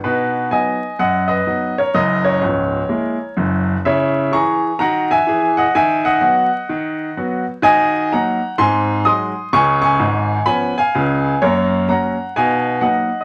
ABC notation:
X:1
M:4/4
L:1/16
Q:"Swing" 1/4=127
K:B
V:1 name="Grand piano"
[FB]4 [dg]4 [df]2 [Bd]4 [Ac]2 | [Ad]2 [Ac]12 z2 | [ce]4 [ac']4 [fa]2 [eg]4 [df]2 | [eg]2 [df]12 z2 |
[K:C#mix] [dg]4 [fa]4 [g^b]4 [bd']4 | [gc']2 [gc']6 [gb]2 [eg]6 | [Ac]4 [fa]4 [eg]4 [df]3 d |]
V:2 name="Grand piano" clef=bass
[B,,D]4 [F,B,D]4 F,,4 [F,B,D]4 | [F,,,F,,]4 [C,,,C,,]4 [G,A,E]4 [F,,,F,,]4 | [C,E]4 [E,G]4 [D,F]4 [E,G]4 | D,4 [F,B,F]4 D,4 [F,B,F]4 |
[K:C#mix] [D,F]4 [F,A,D]4 [G,,^B,]4 [F,G,D]4 | [C,,C,]4 [G,,,G,,]4 [E,B,C]4 [C,,C,]4 | [F,,A,]4 [F,A,C]4 [B,,D]4 [F,A,D]4 |]